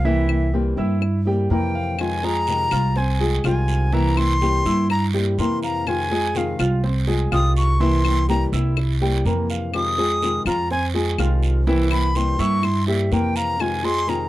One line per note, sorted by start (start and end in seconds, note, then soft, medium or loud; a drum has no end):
0.00 0.71 C2 medium
0.05 0.28 C3 medium
0.05 0.44 E3 medium
0.05 0.28 E3 medium
0.05 0.29 A#3 medium
0.05 0.28 C4 medium
0.05 0.45 E4 medium
0.05 0.28 E4 medium
0.05 0.54 E5 medium
0.05 0.45 E5 medium
0.29 0.53 A#3 soft
0.29 0.53 C4 soft
0.29 0.52 E4 soft
0.29 claves medium
0.53 0.76 C3 medium
0.53 0.77 E3 medium
0.53 0.73 G3 medium
0.53 0.77 A#3 medium
0.53 0.77 C4 medium
0.53 0.75 E4 medium
0.53 0.74 G4 medium
0.53 0.74 G5 medium
0.77 1.46 G2 medium
0.77 1.00 A#3 soft
0.77 1.00 C4 soft
0.77 1.00 E4 medium
0.77 1.18 E4 medium
0.77 1.18 E5 medium
0.77 1.18 E6 medium
1.01 muted nylon-string guitar stroke medium
1.01 claves medium
1.25 1.46 G3 medium
1.25 1.50 A#3 soft
1.25 1.50 C4 soft
1.25 1.49 E4 medium
1.25 1.47 G4 medium
1.25 1.47 G5 medium
1.49 2.65 F2 medium
1.49 1.98 C3 medium
1.49 1.98 E3 medium
1.49 1.70 A#3 medium
1.49 1.98 A#3 medium
1.49 1.98 C4 medium
1.49 1.99 E4 medium
1.49 1.71 A#4 medium
1.49 2.02 G5 medium
1.49 1.71 A#5 medium
1.75 2.15 F5 medium
1.99 2.22 C3 medium
1.99 2.23 D#3 medium
1.99 2.23 G#3 medium
1.99 2.23 C4 medium
1.99 2.22 F4 medium
1.99 2.26 G#5 medium
1.99 long guiro medium
1.99 claves medium
2.23 2.63 G#3 medium
2.23 2.48 G#3 soft
2.23 2.47 C4 soft
2.23 2.47 F4 medium
2.23 2.63 G#4 medium
2.23 2.64 G#5 medium
2.23 2.99 A#5 loud
2.47 2.71 C3 medium
2.47 2.71 D#3 medium
2.47 2.71 G#3 medium
2.47 2.72 C4 medium
2.47 2.71 F4 medium
2.47 short guiro medium
2.71 3.40 C2 loud
2.71 2.96 G#3 soft
2.71 2.96 C4 soft
2.71 2.92 F4 medium
2.71 2.95 F4 soft
2.71 2.92 F5 medium
2.71 2.92 F6 medium
2.71 short guiro medium
2.71 claves medium
2.96 3.16 C4 medium
2.96 3.16 C5 medium
2.96 3.21 G#5 medium
2.96 3.16 C6 medium
2.96 muted nylon-string guitar stroke medium
2.96 long guiro medium
3.20 3.40 G#3 medium
3.20 3.44 G#3 soft
3.20 3.44 C4 soft
3.20 3.43 F4 medium
3.20 3.40 G#4 medium
3.20 3.41 G#5 medium
3.44 4.59 C2 loud
3.44 3.92 C3 medium
3.44 3.92 D#3 medium
3.44 3.93 G#3 medium
3.44 3.93 C4 medium
3.44 3.84 F4 medium
3.44 3.93 F4 medium
3.44 3.84 F5 medium
3.44 3.95 G#5 medium
3.44 3.85 F6 medium
3.44 short guiro medium
3.44 claves medium
3.68 short guiro medium
3.93 4.16 C3 medium
3.93 4.33 E3 medium
3.93 4.17 E3 medium
3.93 4.17 A#3 medium
3.93 4.17 C4 medium
3.93 4.33 E4 medium
3.93 4.16 E4 medium
3.93 4.33 E5 medium
3.93 4.19 A#5 loud
3.93 long guiro medium
4.17 4.41 A#3 soft
4.17 4.41 C4 soft
4.17 4.40 E4 soft
4.17 4.90 C6 loud
4.17 claves medium
4.41 4.65 C3 medium
4.41 4.65 E3 medium
4.41 4.62 G3 medium
4.41 4.65 A#3 medium
4.41 4.66 C4 medium
4.41 4.64 E4 medium
4.41 4.62 G4 medium
4.41 4.62 G5 medium
4.41 short guiro medium
4.65 5.34 G2 medium
4.65 4.89 A#3 soft
4.65 4.89 C4 soft
4.65 4.89 E4 soft
4.65 5.05 E4 medium
4.65 5.06 E5 medium
4.65 5.06 E6 medium
4.65 short guiro medium
4.90 5.05 A#5 medium
4.90 muted nylon-string guitar stroke medium
4.90 long guiro medium
4.90 claves medium
5.14 5.34 G3 medium
5.14 5.38 A#3 soft
5.14 5.38 C4 soft
5.14 5.37 E4 medium
5.14 5.34 G4 medium
5.14 5.34 G5 medium
5.38 6.53 F2 medium
5.38 5.85 C3 medium
5.38 5.86 E3 medium
5.38 5.58 A#3 medium
5.38 5.86 A#3 medium
5.38 5.86 C4 medium
5.38 5.87 E4 medium
5.38 5.59 A#4 medium
5.38 5.59 A#5 medium
5.38 5.62 C6 medium
5.38 short guiro medium
5.63 6.03 F5 medium
5.63 5.89 A#5 medium
5.63 short guiro medium
5.86 6.10 C3 medium
5.86 6.10 D#3 medium
5.86 6.11 G#3 medium
5.86 6.11 C4 medium
5.86 6.10 F4 medium
5.86 6.39 G#5 medium
5.86 long guiro medium
5.86 claves medium
6.11 6.51 G#3 medium
6.11 6.34 G#3 soft
6.11 6.35 C4 soft
6.11 6.34 F4 medium
6.11 6.51 G#4 medium
6.11 6.51 G#5 medium
6.34 6.58 C3 medium
6.34 6.59 D#3 medium
6.34 6.59 G#3 medium
6.34 6.59 C4 medium
6.34 6.58 F4 medium
6.34 6.60 F5 medium
6.34 short guiro medium
6.59 7.28 C2 medium
6.59 6.82 G#3 soft
6.59 6.83 C4 soft
6.59 6.83 F4 soft
6.59 6.79 F4 medium
6.59 6.79 F5 medium
6.59 6.80 F6 medium
6.59 short guiro medium
6.59 claves medium
6.83 7.03 C4 medium
6.83 7.04 C5 medium
6.83 7.04 C6 medium
6.83 muted nylon-string guitar stroke medium
6.83 long guiro medium
7.07 7.27 G#3 medium
7.07 7.32 G#3 soft
7.07 7.32 C4 soft
7.07 7.31 F4 medium
7.07 7.28 G#4 medium
7.07 7.28 G#5 medium
7.31 8.46 C2 medium
7.31 7.79 C3 medium
7.31 7.80 D#3 medium
7.31 7.80 G#3 medium
7.31 7.80 C4 medium
7.31 7.71 F4 medium
7.31 7.80 F4 medium
7.31 7.72 F5 medium
7.31 7.55 D#6 loud
7.31 7.72 F6 medium
7.31 short guiro medium
7.31 claves medium
7.57 7.82 C#6 loud
7.57 short guiro medium
7.80 8.04 C3 medium
7.80 8.20 E3 medium
7.80 8.04 E3 medium
7.80 8.04 A#3 medium
7.80 8.04 C4 medium
7.80 8.20 E4 medium
7.80 8.04 E4 medium
7.80 8.20 E5 medium
7.80 8.29 C6 loud
7.80 long guiro medium
8.05 8.28 A#3 soft
8.05 8.29 C4 soft
8.05 8.28 E4 medium
8.05 claves medium
8.28 8.52 C3 medium
8.28 8.52 E3 medium
8.28 8.48 G3 medium
8.28 8.52 A#3 medium
8.28 8.53 C4 medium
8.28 8.51 E4 medium
8.28 8.49 G4 medium
8.28 8.49 G5 medium
8.28 8.44 A#5 loud
8.28 short guiro medium
8.52 9.21 C2 medium
8.52 8.76 A#3 soft
8.52 8.77 C4 soft
8.52 8.76 E4 soft
8.52 8.92 E4 medium
8.52 8.93 E5 medium
8.52 8.93 E6 medium
8.52 short guiro medium
8.77 muted nylon-string guitar stroke medium
8.77 long guiro medium
8.77 claves medium
9.01 9.21 G3 medium
9.01 9.25 A#3 soft
9.01 9.25 C4 soft
9.01 9.24 E4 medium
9.01 9.21 G4 medium
9.01 9.22 G5 medium
9.25 10.39 F2 medium
9.25 9.72 C3 medium
9.25 9.73 E3 medium
9.25 9.45 A#3 medium
9.25 9.73 A#3 medium
9.25 9.74 C4 medium
9.25 9.74 E4 medium
9.25 9.45 A#4 medium
9.25 9.46 A#5 medium
9.25 short guiro medium
9.50 9.90 F5 medium
9.50 short guiro medium
9.73 9.97 C3 medium
9.73 9.97 D#3 medium
9.73 9.97 G#3 medium
9.73 9.97 C4 medium
9.73 9.96 F4 medium
9.73 10.43 D#6 medium
9.73 long guiro medium
9.73 claves medium
9.98 10.38 G#3 medium
9.98 10.22 G#3 soft
9.98 10.21 C4 soft
9.98 10.21 F4 soft
9.98 10.38 G#4 medium
9.98 10.38 G#5 medium
10.22 10.45 C3 medium
10.22 10.45 D#3 medium
10.22 10.46 G#3 medium
10.22 10.46 C4 medium
10.22 10.45 F4 medium
10.22 short guiro medium
10.45 11.14 F2 medium
10.45 10.71 G#3 soft
10.45 10.70 C4 soft
10.45 10.69 F4 soft
10.45 10.66 F4 medium
10.45 10.66 F5 medium
10.45 10.69 A#5 medium
10.45 10.66 F6 medium
10.45 short guiro medium
10.45 claves medium
10.71 10.90 C4 medium
10.71 10.91 C5 medium
10.71 10.86 G#5 medium
10.71 10.91 C6 medium
10.71 muted nylon-string guitar stroke medium
10.71 long guiro medium
10.94 11.14 G#3 medium
10.94 11.18 G#3 soft
10.94 11.18 C4 medium
10.94 11.17 F4 soft
10.94 11.15 G#4 medium
10.94 11.15 G#5 medium
11.18 12.33 C2 medium
11.18 11.65 C3 medium
11.18 11.66 D#3 medium
11.18 11.66 G#3 medium
11.18 11.67 C4 medium
11.18 11.58 F4 medium
11.18 11.67 F4 medium
11.18 11.59 F5 medium
11.18 11.59 F6 medium
11.18 short guiro medium
11.18 claves medium
11.43 short guiro medium
11.66 11.90 C3 medium
11.66 12.07 E3 medium
11.66 11.90 E3 medium
11.66 11.90 A#3 medium
11.66 11.90 C4 medium
11.66 12.07 E4 medium
11.66 11.89 E4 medium
11.66 12.07 E5 medium
11.66 long guiro medium
11.90 12.15 A#3 soft
11.90 12.14 C4 soft
11.90 12.14 E4 medium
11.90 12.18 B5 loud
11.90 claves medium
12.15 12.38 C3 medium
12.15 12.38 E3 medium
12.15 12.35 G3 medium
12.15 12.39 A#3 medium
12.15 12.39 C4 medium
12.15 12.38 E4 medium
12.15 12.35 G4 medium
12.15 12.36 G5 medium
12.15 12.42 C6 medium
12.15 short guiro medium
12.39 13.07 G2 loud
12.39 12.63 A#3 soft
12.39 12.63 C4 soft
12.39 12.62 E4 soft
12.39 12.79 E4 medium
12.39 12.79 E5 medium
12.39 12.66 C#6 loud
12.39 12.79 E6 medium
12.39 short guiro medium
12.63 12.88 C6 medium
12.63 muted nylon-string guitar stroke medium
12.63 long guiro medium
12.63 claves medium
12.87 13.07 G3 medium
12.87 13.11 A#3 soft
12.87 13.11 C4 soft
12.87 13.10 E4 medium
12.87 13.08 G4 medium
12.87 13.14 E5 soft
12.87 13.08 G5 medium
13.11 14.26 F2 medium
13.11 13.58 C3 medium
13.11 13.59 E3 medium
13.11 13.59 A#3 medium
13.11 13.32 A#3 medium
13.11 13.59 C4 medium
13.11 13.60 E4 medium
13.11 13.32 A#4 medium
13.11 13.37 G5 medium
13.11 13.32 A#5 medium
13.11 short guiro medium
13.36 13.76 F5 medium
13.36 13.62 A#5 loud
13.36 short guiro medium
13.59 13.83 C3 medium
13.59 13.83 D#3 medium
13.59 13.83 G#3 medium
13.59 13.83 C4 medium
13.59 13.82 F4 medium
13.59 13.86 G#5 medium
13.59 long guiro medium
13.59 claves medium
13.83 14.24 G#3 medium
13.83 14.07 G#3 soft
13.83 14.07 C4 soft
13.83 14.07 F4 soft
13.83 14.24 G#4 medium
13.83 14.24 G#5 medium
13.83 14.11 C6 loud
14.07 14.29 C3 medium
14.07 14.29 D#3 medium
14.07 14.29 G#3 medium
14.07 14.29 C4 medium
14.07 14.29 F4 medium
14.07 14.29 A#5 medium
14.07 short guiro medium